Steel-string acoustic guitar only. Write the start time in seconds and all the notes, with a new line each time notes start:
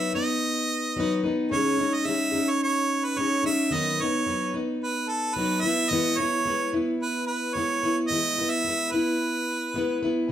Already playing: F#3 B3 D#4 B4
0.13 B3 D#4 B4
0.97 F#3 B3 D#4 B4
1.24 B3 D#4 B4
1.51 C#3 E3 G#3 C#4 D#4 G#4
1.78 G#3 C#4 D#4 G#4
2.05 G#3 C#4 D#4 G#4
2.32 G#3 C#4 D#4 G#4
3.16 G#3 C#4 D#4 G#4
3.43 G#3 C#4 D#4 G#4
3.71 D#3 F#3 B3 D#4 B4
4.00 B3 D#4 B4
4.27 F#3 B3 D#4 B4
4.54 B3 D#4 B4
5.36 F#3 B3 D#4 B4
5.63 B3 E4 B4
5.91 E3 G#3 B3 E4 B4
6.18 B3 E4 B4
6.46 G#3 B3 E4 B4
6.73 B3 E4 B4
7.56 G#3 B3 E4 B4
7.83 B3 E4 B4
8.10 E3 G#3 B3 E4 B4
8.38 B3 E4 B4
8.65 G#3 B3 E4 B4
8.92 B3 E4 B4
9.74 G#3 B3 E4 B4
10.03 B3 E4 B4
10.29 C#3